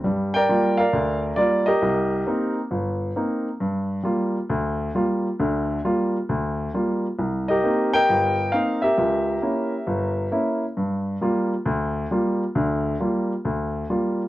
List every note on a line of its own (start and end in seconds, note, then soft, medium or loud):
0.04 0.42 G2 medium
0.04 0.43 G3 medium
0.34 0.78 A#4 medium
0.34 0.78 D5 medium
0.34 0.80 G5 medium
0.49 0.80 G3 medium
0.49 0.80 A#3 soft
0.49 0.80 F4 medium
0.78 1.64 A#4 medium
0.78 1.35 D5 medium
0.78 1.19 F5 medium
0.93 1.32 D2 medium
1.36 1.69 G3 soft
1.36 1.69 A#3 soft
1.36 1.69 F4 medium
1.36 1.68 D5 medium
1.66 2.53 G4 medium
1.66 2.53 A#4 medium
1.66 2.22 D#5 medium
1.82 2.21 C2 medium
2.27 2.58 A#3 medium
2.27 2.58 C4 soft
2.27 2.59 D#4 medium
2.71 3.10 G1 medium
3.16 3.48 A#3 soft
3.16 3.48 C4 soft
3.16 3.48 D#4 medium
3.60 3.99 G2 medium
4.03 4.36 G3 soft
4.03 4.36 A#3 soft
4.03 4.37 F4 medium
4.49 4.88 D2 medium
4.95 5.26 G3 soft
4.95 5.27 A#3 soft
4.95 5.27 F4 medium
5.39 5.78 D2 medium
5.39 5.78 D3 medium
5.85 6.16 G3 soft
5.85 6.16 A#3 soft
5.85 6.16 F4 medium
6.29 6.68 D2 medium
6.74 7.05 G3 soft
6.74 7.06 A#3 soft
6.74 7.06 F4 medium
7.19 7.57 C2 medium
7.48 8.35 G4 medium
7.48 7.93 A#4 medium
7.48 7.93 D#5 medium
7.64 7.95 A#3 soft
7.64 7.95 C4 soft
7.64 7.95 D#4 medium
7.93 8.79 A#4 medium
7.93 8.79 D#5 medium
7.93 8.54 G5 loud
8.09 8.47 G1 medium
8.52 8.84 A#3 soft
8.52 8.85 C4 soft
8.52 8.85 D#4 medium
8.52 8.83 F5 medium
8.82 10.58 G4 medium
8.82 10.58 A#4 medium
8.82 10.57 E5 medium
8.98 9.36 C#2 medium
9.42 9.73 A#3 soft
9.42 9.74 C#4 soft
9.42 9.74 E4 medium
9.87 10.26 G1 medium
10.31 10.63 A#3 medium
10.31 10.63 C#4 soft
10.31 10.63 E4 medium
10.77 11.15 G2 medium
11.21 11.53 G3 medium
11.21 11.53 A#3 soft
11.21 11.53 F4 medium
11.65 12.04 D2 medium
12.11 12.42 G3 medium
12.11 12.42 A#3 soft
12.11 12.43 F4 medium
12.55 12.94 D2 medium
12.55 12.94 D3 medium
13.00 13.32 G3 medium
13.00 13.32 A#3 soft
13.00 13.32 F4 medium
13.45 13.83 D2 medium
13.90 14.21 G3 soft
13.90 14.21 A#3 soft
13.90 14.21 F4 medium